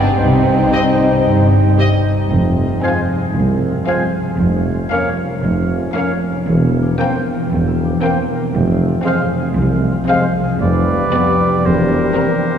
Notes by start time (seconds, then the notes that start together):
Already playing: G1 G2 G3 B3 D4 B4 G5
0.01 C3 D4
0.06 D#4
0.10 G4
0.15 C5
0.19 C2 C3 C4 D#4 G5
0.72 C4 G4 D#5
1.25 G1 G2
1.78 C4 G4 D#5
2.31 F1 F2 F3
2.48 C4
2.66 F4
2.83 F3 G#3 C4 G#4 C5 F5 G#5
3.01 C5
3.18 G#4
3.35 C2 F3
3.52 C4
3.70 F4
3.87 F3 G#3 C4 G#4 C5 F5 G#5
4.05 C5
4.23 G#4
4.40 F1 F2 F3
4.57 C#4
4.74 F4
4.92 A#3 C#4 A#4 C#5 F5
5.09 C#5
5.26 A#4
5.43 F1 F2 F3
5.61 C#4
5.79 F4
5.95 A#3 C#4 A#4 C#5 F5
6.13 C#5
6.30 A#4
6.47 E1 E2 E3
6.65 E4
6.82 G4
6.98 A#3 C4 A#4 C5 G5
7.16 C5
7.33 A#4
7.50 E1 E2 E3
7.67 E4
7.85 G4
8.01 A#3 C4 A#4 C5 G5
8.18 C5
8.36 A#4
8.53 F1 F2 F3
8.71 C4
8.87 F4
9.04 G#3 C4 G#4 C5 F5
9.22 C5
9.40 G#4
9.56 C2 F3
9.74 C4
9.92 F4
10.08 G#3 C4 G#4 C5 F5
10.26 C5
10.43 G#4
10.60 F1 F2 F3 G3 B4 D5
10.78 B3
10.96 D4
11.13 G3 B3 G4 D5
11.31 B4
11.48 G4
11.64 E1 E2 E3 A#4 C5
11.82 A#3
11.99 C4
12.16 A#3 C4 G4 A#4
12.33 A#4
12.50 G4